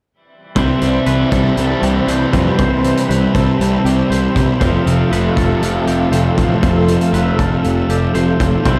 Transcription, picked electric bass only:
0.56 C2
0.82 C2
1.07 C2
1.32 C2
1.57 C2
1.82 C2
2.08 C2
2.33 F2
2.59 C2
3.10 C2
3.35 C2
3.60 C2
3.85 C2
4.10 C2
4.36 C2
4.61 F1
4.86 F1
5.12 F1
5.37 F1
5.62 F1
5.87 F1
6.12 F1
6.38 A1
6.63 F1
7.13 F1
7.39 F1
7.65 F1
7.89 F1
8.15 F1
8.40 F1
8.66 C2

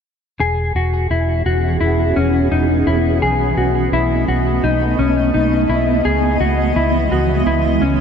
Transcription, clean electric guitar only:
0.40 G#4
0.76 F#4
1.11 E4
1.46 F#4
1.81 E4
2.16 C#4
2.52 D#4
2.87 E4
3.22 G#4
3.57 F#4
3.93 E4
4.28 F#4
4.64 D#4
4.99 C#4
5.34 D#4
5.70 E4
6.05 G#4
6.40 F#4
6.76 E4
7.12 F#4
7.47 E4
7.82 C#4

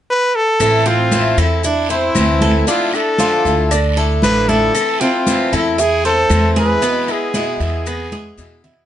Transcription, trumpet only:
0.10 B4
0.35 A4
0.87 F4
1.39 E4
1.65 D4
1.91 E4
2.68 F4
2.95 A4
4.23 B4
4.49 A4
5.01 F4
5.54 E4
5.80 G#4
6.06 A4
6.59 B4
7.11 G#4
7.63 G#4

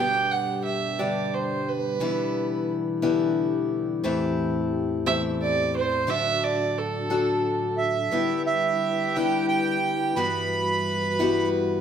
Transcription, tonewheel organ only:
Already playing: B2 D4 G4
0.00 G3
1.99 B2 E3 D4 G4
4.05 E2 A2 C4
6.09 F#3 D4 F#4
8.11 D3 G3 E4 B4
10.16 G2 E3 F#4

